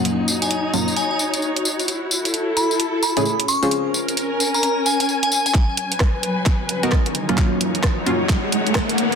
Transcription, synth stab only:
X:1
M:4/4
L:1/16
Q:"Swing 16ths" 1/4=131
K:G#dor
V:1 name="Synth stab"
[F,A,CE]6 [F,A,CE] z8 z | z8 z3 [=A,C=EG] z3 [C^EG^B]- | [CEG^B]6 z8 z2 | z8 z3 [B,DFA] z3 [F,A,CE]- |
[F,A,CE]6 [F,A,CE] z8 z |]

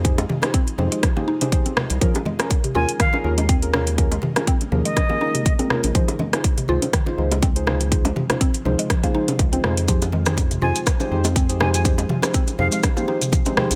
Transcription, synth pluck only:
X:1
M:4/4
L:1/16
Q:"Swing 16ths" 1/4=122
K:Fm
V:1 name="Synth pluck" clef=bass
z A, C, z C z F, A, F, B, E C, z C z2 | F, z A, z2 C, F z E, z2 A, C z3 | z A, C, z C z F, A, F, B, E C, z C z2 | F, z A, z2 C, F z E, z2 A, C z3 |
z A, C, z C z F, A, F, B, E C, z C z2 | F, z A, E, z C, F z4 A, C z3 | z A, C, z C z F, A, F, B, E C, z C z2 |]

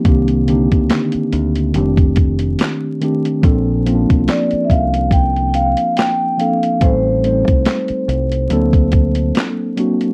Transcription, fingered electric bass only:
X:1
M:4/4
L:1/16
Q:"Swing 16ths" 1/4=71
K:Bb
V:1 name="Fingered electric bass" clef=bass
C,,3 D,, z2 D,,2 F,,,4 z4 | B,,,3 C,, z2 C,,4- C,, z4 z | A,,,3 C,, z2 C,,2 D,,4 z4 |]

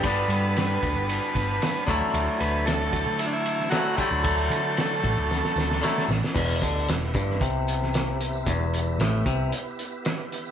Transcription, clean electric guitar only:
X:1
M:4/4
L:1/8
Q:1/4=114
K:Em
V:1 name="Clean electric guitar" clef=bass
[G,,D,G,B,D]6- [G,,D,G,B,D] [D,F,A,E]- | [D,F,A,E]6 [D,F,A,E] [D,F,A,E]- | [D,F,A,E]6 [D,F,A,E] z | E,, D, E,, G,, C,4 |
E,,2 A,, C, z4 |]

